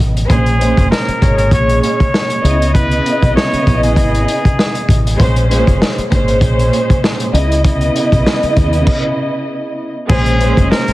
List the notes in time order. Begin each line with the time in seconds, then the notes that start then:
Already playing: C#3 B3 E4 D#5
0.00 A1, closed hi-hat
0.17 closed hi-hat
0.28 A#1 A#2 G#3 C#4 G#4 C5, kick, closed hi-hat
0.46 closed hi-hat
0.59 A#2 G#3 C#4 C5, closed hi-hat
0.77 F1, kick, closed hi-hat
0.91 A#4, snare
1.08 muted fingered electric bass stroke, closed hi-hat
1.21 G#1 A#2 G#3 C#4 C#5, kick, closed hi-hat
1.38 A#4, closed hi-hat
1.51 A#1 C#5, kick, closed hi-hat
1.69 closed hi-hat
1.82 C#5, closed hi-hat
2.00 kick, closed hi-hat
2.14 snare
2.30 closed hi-hat
2.42 C#2 C#3 B3 E4 D#5, closed hi-hat
2.62 closed hi-hat
2.74 C#3 B3 E4 B4 D#5, kick, closed hi-hat
2.91 closed hi-hat
3.06 closed hi-hat
3.22 B1, kick, closed hi-hat
3.36 C#5, snare
3.53 muted fingered electric bass stroke, closed hi-hat
3.67 A#1, kick, closed hi-hat
3.83 G#4, closed hi-hat
3.96 G#1, kick, closed hi-hat
4.14 closed hi-hat
4.28 closed hi-hat
4.45 kick, closed hi-hat
4.59 snare
4.75 closed hi-hat
4.89 A1, kick, closed hi-hat
5.07 closed hi-hat
5.17 A#1 A#2 G#3 C#4 C5, kick, closed hi-hat
5.36 closed hi-hat
5.49 A#2 G#3 C#4 C5, closed hi-hat
5.67 F1, kick, closed hi-hat
5.82 snare
5.98 muted fingered electric bass stroke, closed hi-hat
6.11 G#1 A#2 G#3 C#4 C5, kick, closed hi-hat
6.28 closed hi-hat
6.41 A#1, kick, closed hi-hat
6.59 closed hi-hat
6.73 closed hi-hat
6.90 kick, closed hi-hat
7.04 snare
7.20 closed hi-hat
7.32 C#2 C#3 B3 E4 D#5, closed hi-hat
7.52 closed hi-hat
7.64 C#3 B3 E4 D#5, kick, closed hi-hat
7.81 closed hi-hat
7.96 closed hi-hat
8.12 B1, kick, closed hi-hat
8.27 snare
8.43 muted fingered electric bass stroke, closed hi-hat
8.57 D#2, kick, closed hi-hat
8.73 closed hi-hat
8.87 kick, crash
10.07 A#1 A#2 C#3 G#3 C#4 G#4 C5, kick, crash
10.26 closed hi-hat
10.39 A#2 G#3 C#4 C5, closed hi-hat
10.57 F1, kick, closed hi-hat
10.71 A#4, snare
10.88 muted fingered electric bass stroke, closed hi-hat